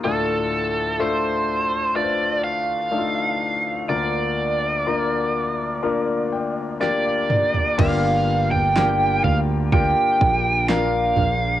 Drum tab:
CC |----------------|----------------|x---------------|
SD |----------------|------------o---|----o-------o---|
T2 |----------------|--------------o-|----------------|
FT |----------------|---------------o|o--o--o-o-----o-|
BD |----------------|----------------|o-------o-o-----|